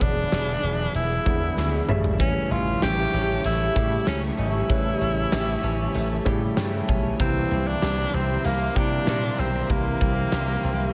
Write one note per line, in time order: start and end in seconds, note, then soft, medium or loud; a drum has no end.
0.00 0.24 E1 medium
0.00 1.26 D3 medium
0.00 1.26 G#3 medium
0.00 1.26 B3 medium
0.00 0.95 D4 loud
0.00 1.27 E4 medium
0.00 1.85 G#4 medium
0.00 0.48 C#5 medium
0.00 10.93 E5 medium
0.00 1.85 B5 medium
0.00 kick medium
0.00 closed hi-hat medium
0.32 0.55 E1 medium
0.32 snare loud
0.32 closed hi-hat medium
0.63 0.86 E1 medium
0.63 closed hi-hat medium
0.95 1.17 E1 loud
0.95 1.85 E4 medium
0.95 closed hi-hat medium
1.26 1.49 E2 medium
1.26 1.84 D3 medium
1.26 1.85 G#3 medium
1.26 1.85 B3 medium
1.26 1.85 E4 medium
1.26 kick medium
1.26 closed hi-hat medium
1.57 1.80 D2 medium
1.57 snare soft
1.88 2.34 A1 medium
1.88 2.88 C#3 medium
1.88 2.89 G3 medium
1.88 2.89 A3 medium
1.88 7.16 G4 medium
1.88 2.89 E5 medium
1.88 7.16 A5 medium
1.88 7.16 C#6 medium
1.88 mid tom medium
2.04 floor tom medium
2.20 4.69 E3 medium
2.20 2.54 C#4 medium
2.20 kick loud
2.20 closed hi-hat medium
2.51 2.73 A1 medium
2.51 3.12 C#4 medium
2.51 2.83 F4 medium
2.51 closed hi-hat medium
2.82 3.05 A1 medium
2.82 3.75 G4 medium
2.82 3.41 G4 loud
2.82 snare medium
2.82 closed hi-hat medium
3.13 3.36 A1 medium
3.13 4.37 C#4 medium
3.13 closed hi-hat medium
3.44 3.67 A1 loud
3.44 4.06 A3 medium
3.44 4.04 E4 medium
3.44 closed hi-hat medium
3.75 3.99 A2 medium
3.75 4.34 C#3 medium
3.75 4.34 G3 medium
3.75 4.35 A3 medium
3.75 4.35 E4 medium
3.75 5.32 G4 medium
3.75 kick medium
3.75 closed hi-hat medium
4.07 4.30 C#2 medium
4.07 5.94 A3 medium
4.07 4.22 C#4 medium
4.07 snare loud
4.07 closed hi-hat medium
4.38 4.61 G#1 medium
4.38 5.00 C#4 medium
4.38 6.23 E4 medium
4.38 closed hi-hat medium
4.69 4.92 A1 loud
4.69 5.47 C#3 medium
4.69 7.19 E3 medium
4.69 5.48 G3 medium
4.69 5.48 A3 medium
4.69 5.48 C#4 medium
4.69 kick loud
4.69 closed hi-hat medium
5.01 5.23 A1 medium
5.01 5.62 C#4 medium
5.01 closed hi-hat medium
5.32 5.55 A1 medium
5.32 6.26 G4 medium
5.32 snare loud
5.32 closed hi-hat medium
5.63 5.86 A1 medium
5.63 6.87 C#4 medium
5.63 closed hi-hat medium
5.94 6.17 A1 loud
5.94 6.56 A3 medium
5.94 closed hi-hat medium
6.25 6.49 A2 medium
6.25 6.84 C#3 medium
6.25 6.84 G3 medium
6.25 6.85 A3 medium
6.25 6.85 E4 medium
6.25 7.82 G4 medium
6.25 kick medium
6.25 closed hi-hat medium
6.57 6.80 G2 medium
6.57 7.26 A3 medium
6.57 6.86 G5 medium
6.57 snare loud
6.57 closed hi-hat medium
6.88 7.11 B1 medium
6.88 7.26 C#4 medium
6.88 7.17 A5 medium
6.88 kick medium
6.88 closed hi-hat medium
7.19 7.42 C2 loud
7.19 7.97 C3 medium
7.19 9.69 E3 medium
7.19 7.98 G3 medium
7.19 7.98 A#3 medium
7.19 7.69 C4 loud
7.19 7.98 E4 medium
7.19 10.93 G4 medium
7.19 10.93 A#5 medium
7.19 10.93 C6 medium
7.19 kick loud
7.19 closed hi-hat medium
7.51 7.74 C2 medium
7.51 8.13 C4 medium
7.51 closed hi-hat medium
7.67 8.16 D4 loud
7.82 8.05 C2 medium
7.82 8.76 G4 medium
7.82 snare loud
7.82 closed hi-hat medium
8.14 8.36 C2 medium
8.14 9.38 C4 medium
8.14 8.47 C4 medium
8.14 closed hi-hat medium
8.45 8.67 C2 loud
8.45 9.06 A#3 medium
8.45 8.79 A#3 medium
8.45 closed hi-hat medium
8.76 9.34 C3 medium
8.76 8.99 C3 medium
8.76 9.34 G3 medium
8.76 9.35 A#3 medium
8.76 9.41 D4 loud
8.76 9.35 E4 medium
8.76 10.32 G4 medium
8.76 kick medium
8.76 closed hi-hat medium
9.07 9.30 A#2 medium
9.07 10.93 A#3 medium
9.07 snare medium
9.07 closed hi-hat medium
9.38 9.61 B1 medium
9.38 10.01 C4 medium
9.38 9.73 C4 medium
9.38 closed hi-hat medium
9.69 9.92 C2 loud
9.69 10.48 C3 medium
9.69 10.93 E3 medium
9.69 10.48 G3 medium
9.69 10.48 A#3 medium
9.69 10.93 A#3 medium
9.69 10.48 E4 medium
9.69 kick loud
9.69 closed hi-hat medium
10.01 10.24 C2 medium
10.01 10.63 C4 medium
10.01 kick medium
10.01 closed hi-hat medium
10.32 10.55 C2 medium
10.32 10.93 G4 medium
10.32 snare loud
10.32 closed hi-hat medium
10.63 10.86 C2 medium
10.63 10.93 C4 medium
10.63 closed hi-hat medium